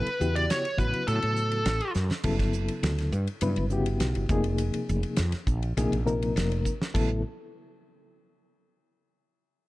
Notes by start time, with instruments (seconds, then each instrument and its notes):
Already playing: lead electric guitar B4
0.07 ride
0.20 fretless electric bass E2, reed electric piano C#3 B3 E4 F#4 G4, hi-hat pedal
0.36 lead electric guitar D5, ride
0.50 lead electric guitar C#5, snare, hi-hat pedal, ride
0.65 ride
0.77 fretless electric bass A1, reed electric piano C#3 F#3 B3 E4 F#4, lead electric guitar B4, kick, hi-hat pedal
0.94 ride
1.08 fretless electric bass A2, lead electric guitar A4, hi-hat pedal, ride
1.22 fretless electric bass A2, ride
1.36 hi-hat pedal
1.52 ride
1.66 fretless electric bass A1, snare, hi-hat pedal, ride
1.81 ride
1.94 fretless electric bass F#2, snare, hi-hat pedal
2.11 muted fretless electric bass stroke, snare
2.24 fretless electric bass G1, reed electric piano C#3 F#3 B3 E4 A4, kick, crash
2.39 kick, snare, ride
2.53 fretless electric bass F#1, hi-hat pedal
2.68 ride
2.83 fretless electric bass D2, snare, hi-hat pedal, ride
2.98 snare, ride
3.12 fretless electric bass G2, hi-hat pedal
3.27 ride
3.41 fretless electric bass G2, reed electric piano C#3 F#3 B3 E4 B4, hi-hat pedal, ride
3.56 fretless electric bass G1, ride
3.70 reed electric piano C#3 B3 E4 F#4 G4, hi-hat pedal
3.86 ride
4.00 fretless electric bass B1, snare, hi-hat pedal, ride
4.15 fretless electric bass G1, ride
4.29 fretless electric bass F1, reed electric piano C3 F3 A#3 D#4 G#4, kick, hi-hat pedal
4.44 ride
4.58 hi-hat pedal, ride
4.74 muted fretless electric bass stroke, ride
4.89 fretless electric bass F1, hi-hat pedal
5.03 ride
5.16 fretless electric bass F2, snare, hi-hat pedal, ride
5.32 muted fretless electric bass stroke, snare, ride
5.47 fretless electric bass A#1, kick, hi-hat pedal
5.63 ride
5.77 fretless electric bass A#1, reed electric piano C3 F3 A#3 D#4 G#4, hi-hat pedal, ride
5.92 fretless electric bass A#1, ride
6.06 reed electric piano C3 F3 A#3 D#4 A#4, hi-hat pedal
6.22 ride
6.36 fretless electric bass F1, snare, hi-hat pedal, ride
6.52 ride
6.65 kick, hi-hat pedal
6.82 snare
6.94 fretless electric bass A1, reed electric piano C#3 F#3 B3 E4 A4, kick, crash